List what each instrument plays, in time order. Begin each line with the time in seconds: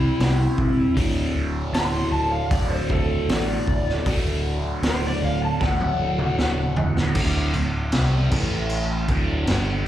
Already playing: overdriven electric guitar C3 G3 C4, electric slide guitar E4
0.20 fingered electric bass C2, snare, open hi-hat
0.58 fingered electric bass E1, kick
0.94 fingered electric bass D1, overdriven electric guitar D2 A2, kick, open hi-hat
0.99 overdriven electric guitar D3
1.35 fingered electric bass D1
1.73 fingered electric bass D1, electric slide guitar C6, snare, open hi-hat
2.12 fingered electric bass D1, electric slide guitar A5
2.32 electric slide guitar F5
2.50 fingered electric bass D1, overdriven electric guitar D2 A2, electric slide guitar D5, kick, open hi-hat
2.54 overdriven electric guitar D3
2.71 electric slide guitar C5
2.90 fingered electric bass D1, electric slide guitar A4, kick
3.28 fingered electric bass A1, electric slide guitar D5, snare, open hi-hat
3.67 fingered electric bass D1, kick
3.89 snare
4.06 fingered electric bass D1, overdriven electric guitar D2 A2 D3, kick, open hi-hat
4.82 fingered electric bass D1, snare, open hi-hat
4.87 electric slide guitar C5
5.07 electric slide guitar D5
5.22 fingered electric bass D1, electric slide guitar F5
5.45 electric slide guitar A5
5.59 fingered electric bass D1, overdriven electric guitar D2 A2 D3, electric slide guitar F#5, kick, snare
5.81 high tom
5.99 fingered electric bass D1
6.18 mid tom
6.38 fingered electric bass D1, snare
6.76 fingered electric bass D1, floor tom
6.97 snare
7.15 fingered electric bass D1, overdriven electric guitar D2 A2 D3, kick, crash
7.53 fingered electric bass D1, overdriven electric guitar D2 A2, crash
7.92 fingered electric bass C2, overdriven electric guitar C3 G3 C4, snare, crash
8.31 fingered electric bass A1, overdriven electric guitar A2 E3 A3, kick, crash
8.70 crash
9.08 fingered electric bass D1, overdriven electric guitar D2 A2 D3, kick, crash
9.47 fingered electric bass G1, overdriven electric guitar G2 D3 G3, snare, crash